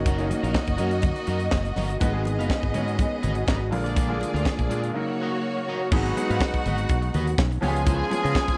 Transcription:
Already playing: fingered electric bass F#1, grand piano D#3 A#3 C#4 F#4, string section A#3 F#4 D#5
0.06 clean electric guitar F#4 A#4 D#5, kick, closed hi-hat, muted conga
0.18 grand piano D#3 A#3 C#4 D#4, closed hi-hat
0.30 muted clean electric guitar stroke, closed hi-hat, muted conga
0.43 fingered electric bass A#1, clean electric guitar F#4 A#4 F5, closed hi-hat
0.54 kick, snare, high conga
0.66 fingered electric bass F#1, muted clean electric guitar stroke, kick, closed hi-hat
0.77 fingered electric bass F#2, grand piano D#3 A#3 C#4 F#4, clean electric guitar F#4 A#4 D#5, closed hi-hat, muted conga
0.91 muted clean electric guitar stroke, closed hi-hat
1.02 muted clean electric guitar stroke, kick, closed hi-hat, muted conga, low conga
1.16 muted clean electric guitar stroke, closed hi-hat
1.27 fingered electric bass F#2, clean electric guitar F#4 A#4 D#5, closed hi-hat
1.40 muted clean electric guitar stroke, closed hi-hat
1.51 fingered electric bass F#1, kick, snare, high conga
1.65 muted clean electric guitar stroke, closed hi-hat
1.76 fingered electric bass G1, clean electric guitar F#4 A#4 D#5, snare, open hi-hat, high conga
1.90 muted clean electric guitar stroke, closed hi-hat
2.00 fingered electric bass G#1, grand piano D#3 G#3 B3 F#4, string section B3 G#4 D#5, clean electric guitar F#4 B4 D#5, kick, closed hi-hat, muted conga
2.12 grand piano D#3 G#3 B3 G#4
2.25 muted clean electric guitar stroke, closed hi-hat, muted conga
2.38 fingered electric bass F#1, clean electric guitar F#4 B4 F5, closed hi-hat
2.50 kick, snare, high conga
2.63 fingered electric bass G#1, muted clean electric guitar stroke, kick
2.73 fingered electric bass G#2, grand piano D#3 G#3 A#3 C#4, clean electric guitar F#4 B4 D#5, closed hi-hat, low conga
2.80 grand piano B3
2.88 muted clean electric guitar stroke, closed hi-hat
2.98 muted clean electric guitar stroke, kick, closed hi-hat, muted conga
3.11 muted clean electric guitar stroke
3.23 fingered electric bass G#1, clean electric guitar F#4 B4 D#5, closed hi-hat, low conga
3.35 muted clean electric guitar stroke, closed hi-hat
3.47 fingered electric bass G#1, clean electric guitar F#4 B4 D#5, kick, snare, high conga
3.62 muted clean electric guitar stroke
3.71 fingered electric bass A#1, grand piano D3 G#3 A#3 F4, string section A#3 G#4 D5, muted clean electric guitar stroke, open hi-hat, high conga
3.84 clean electric guitar F4 G#4 D5, closed hi-hat
3.96 clean electric guitar F4 G#4 D5, kick, closed hi-hat, muted conga
4.08 grand piano D3 G#3 A#3 F4
4.21 muted clean electric guitar stroke, closed hi-hat, muted conga
4.34 fingered electric bass D2, clean electric guitar F4 G#4 F5, closed hi-hat
4.45 kick, snare, high conga
4.59 fingered electric bass A#1, muted clean electric guitar stroke, kick, closed hi-hat
4.69 fingered electric bass A#2, grand piano D3 G#3 A#3 G#4, clean electric guitar F4 G#4 D5, closed hi-hat
4.83 muted clean electric guitar stroke, closed hi-hat
4.94 grand piano C#3 F#3 A#3 D#4, string section A#3 F#4 C#5, muted clean electric guitar stroke
5.09 muted clean electric guitar stroke
5.21 clean electric guitar F#4 A#4 D#5
5.33 muted clean electric guitar stroke
5.57 muted clean electric guitar stroke
5.68 clean electric guitar F#4 A#4 D#5
5.82 muted clean electric guitar stroke
5.91 fingered electric bass G#1, grand piano F#3 G#3 B3 D#4 G#4, horn section B3 D#4 F#4, clean electric guitar F#4 B4 D#5, string section F#4 F#5, kick, crash, muted conga
6.05 closed hi-hat
6.16 grand piano F#3 G#3 B3 D#4 G#4, muted clean electric guitar stroke, closed hi-hat, muted conga
6.30 fingered electric bass G#2, clean electric guitar F#4 B4 F5, closed hi-hat
6.41 kick, snare, high conga
6.54 muted clean electric guitar stroke, kick, closed hi-hat
6.66 fingered electric bass G#1, clean electric guitar F#4 B4 D#5, closed hi-hat, muted conga, low conga
6.78 muted clean electric guitar stroke, closed hi-hat
6.89 fingered electric bass B1, muted clean electric guitar stroke, kick, closed hi-hat, muted conga
7.02 muted clean electric guitar stroke, closed hi-hat
7.14 fingered electric bass D#2, clean electric guitar F#4 B4 D#5, closed hi-hat, low conga
7.27 muted clean electric guitar stroke, closed hi-hat
7.38 fingered electric bass B1, kick, snare, high conga
7.52 muted clean electric guitar stroke, closed hi-hat
7.61 fingered electric bass C#2, grand piano F3 G#3 B3 C#4 G4, horn section C#4 F4 G#4, clean electric guitar F4 B4 C#5, string section G#4 G#5, open hi-hat, high conga
7.68 grand piano G#4
7.75 muted clean electric guitar stroke, closed hi-hat
7.86 clean electric guitar F4 B4 C#5, kick, closed hi-hat, muted conga
8.10 grand piano F3 G#3 B3 C#4 G#4, muted clean electric guitar stroke, closed hi-hat, muted conga
8.23 fingered electric bass C#3, clean electric guitar F4 B4 D#5, closed hi-hat
8.35 kick, snare, high conga
8.48 muted clean electric guitar stroke, kick, closed hi-hat

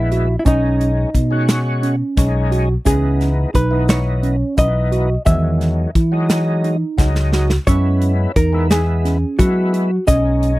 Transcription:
Already playing: fingered electric bass A#1, tonewheel organ G#3 B3 E4, hollow-body jazz guitar E4
0.12 tine electric piano F#4, closed hi-hat
0.39 hollow-body jazz guitar E4
0.45 fingered electric bass B1, tonewheel organ G#3 C#4 D#4, tine electric piano C#4, hollow-body jazz guitar D#4, kick, closed hi-hat, shaker
0.81 closed hi-hat
1.14 fingered electric bass B2, tine electric piano D#4, kick, closed hi-hat, shaker
1.31 tonewheel organ G#3 C#4 F#4
1.49 snare, closed hi-hat, shaker
1.83 tine electric piano C#4, closed hi-hat
2.17 fingered electric bass B1, tonewheel organ G#3 C#4 D#4, kick, snare, closed hi-hat, shaker
2.51 tine electric piano F#4, closed hi-hat
2.85 fingered electric bass C#2, tonewheel organ E3 B3 D#4, tine electric piano C#4, hollow-body jazz guitar G#4, kick, closed hi-hat, shaker
3.21 snare, closed hi-hat
3.54 fingered electric bass B1, tine electric piano D#4, hollow-body jazz guitar B4, kick, closed hi-hat, shaker
3.71 tonewheel organ E3 B3 D#4
3.89 hollow-body jazz guitar C#5, snare, closed hi-hat, shaker
4.23 tine electric piano C#4, closed hi-hat
4.57 fingered electric bass B1, tonewheel organ E3 B3 D#4, hollow-body jazz guitar D#5, kick, closed hi-hat, shaker
4.92 tine electric piano F#4, closed hi-hat
5.25 fingered electric bass E2, tine electric piano D#3, tonewheel organ D#3 F#3 G#3, hollow-body jazz guitar E5, kick, closed hi-hat, shaker
5.61 snare, closed hi-hat
5.95 fingered electric bass E3, tine electric piano E4, kick, closed hi-hat
6.12 tonewheel organ F#3 G#3 D#4
6.30 snare, closed hi-hat, shaker
6.64 tine electric piano D#4, closed hi-hat
6.98 fingered electric bass C#2, tonewheel organ F#3 G#3 D#4, kick, snare, shaker
7.15 snare
7.33 tine electric piano F#4, snare
7.50 snare
7.67 fingered electric bass F#2, tonewheel organ G#3 B3 E4, tine electric piano C#4, hollow-body jazz guitar C#5, kick, closed hi-hat, shaker
8.02 closed hi-hat
8.36 fingered electric bass E2, tine electric piano D#4, hollow-body jazz guitar A#4, kick, closed hi-hat, shaker
8.53 tonewheel organ G#3 B3 E4
8.71 hollow-body jazz guitar G#4, snare, closed hi-hat, shaker
9.05 tine electric piano C#4, snare, closed hi-hat
9.39 fingered electric bass F#3, tonewheel organ G#3 B3 E4, hollow-body jazz guitar F#4, kick, closed hi-hat, shaker
9.73 tine electric piano F#4, closed hi-hat
10.07 fingered electric bass B1, tonewheel organ G#3 C#4 D#4, tine electric piano C#4, hollow-body jazz guitar D#5, kick, closed hi-hat, shaker
10.43 closed hi-hat

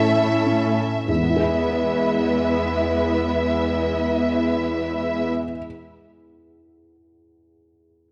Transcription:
Already playing: cello section A2, felt piano A2 E3 C#4 E4 A4, viola section A3 C#4, violin section E4 A4 E5
0.46 felt piano C#4
1.07 cello section E2, felt piano E2, viola section G#3 B3, violin section E4 B4 E5
1.15 felt piano E3
1.22 felt piano B3
1.30 felt piano E4
1.36 felt piano G#4
1.43 felt piano E5

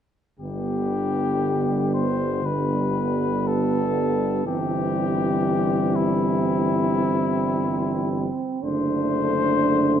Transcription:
0.39 tuba G1, trombone D3, euphonium G3, french horn section B3, cornet G4
1.94 cornet C5
2.43 trombone D3, euphonium G3, french horn section B3, cornet B4
3.47 cornet A4
4.46 tuba G1, trombone E3, euphonium G3, french horn section C4, cornet G4
5.96 cornet E4
8.61 tuba F#1, trombone D3, euphonium A3, french horn section D4, cornet C5

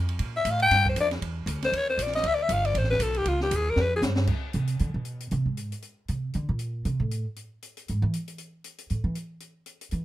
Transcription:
Already playing: upright bass F2
0.09 ride
0.19 upright bass A#2, kick, ride
0.37 alto saxophone E5
0.45 upright bass A2, kick, hi-hat pedal, ride
0.50 alto saxophone F5
0.60 alto saxophone G5, ride
0.71 upright bass G2, kick, snare, ride
0.86 alto saxophone C5, kick
0.96 upright bass F2, kick, hi-hat pedal, ride
1.00 alto saxophone D5
1.11 snare, ride
1.22 upright bass E2, kick, ride
1.46 upright bass D2, kick, hi-hat pedal, ride
1.62 alto saxophone C5, snare, ride
1.72 upright bass D#2, kick, ride
1.77 alto saxophone C#5
1.90 alto saxophone C5
1.98 upright bass A#1, kick, hi-hat pedal, ride
2.03 alto saxophone D5
2.07 snare
2.13 alto saxophone D#5, snare, ride
2.23 upright bass D2, kick, ride
2.27 alto saxophone E5
2.35 alto saxophone D5
2.43 alto saxophone E5
2.49 upright bass G1, alto saxophone F5, kick, hi-hat pedal, ride
2.65 alto saxophone D5, ride
2.74 upright bass A1, alto saxophone C5, kick, ride
2.84 snare
2.90 alto saxophone B4, snare
2.99 upright bass B1, alto saxophone A4, kick, hi-hat pedal, ride
3.14 alto saxophone G4, ride
3.25 upright bass C#2, alto saxophone F4, kick, ride
3.40 alto saxophone G4, snare
3.51 upright bass D#2, kick, hi-hat pedal, ride
3.56 alto saxophone G#4
3.70 alto saxophone A#4
3.76 upright bass F2, snare
3.81 alto saxophone B4
3.96 alto saxophone G#4
4.02 upright bass G2, snare, hi-hat pedal
4.16 snare
4.27 kick, crash
4.53 upright bass C3, closed hi-hat
4.67 closed hi-hat
4.79 upright bass D3, closed hi-hat
4.94 upright bass B2
5.05 closed hi-hat
5.20 closed hi-hat
5.31 upright bass C3, closed hi-hat
5.46 upright bass G#2
5.57 closed hi-hat
5.72 closed hi-hat
5.82 closed hi-hat
6.08 upright bass C3, closed hi-hat
6.34 upright bass D3, closed hi-hat
6.49 upright bass A#2
6.59 closed hi-hat
6.85 upright bass C3, closed hi-hat
7.00 upright bass A2
7.11 closed hi-hat
7.36 closed hi-hat
7.62 closed hi-hat
7.77 closed hi-hat
7.88 upright bass G#2, closed hi-hat
8.02 upright bass E3
8.14 closed hi-hat
8.28 closed hi-hat
8.38 closed hi-hat
8.64 closed hi-hat
8.78 closed hi-hat
8.90 upright bass A2, closed hi-hat
9.04 upright bass E3
9.15 closed hi-hat
9.40 closed hi-hat
9.66 closed hi-hat
9.81 closed hi-hat
9.91 upright bass E3, closed hi-hat

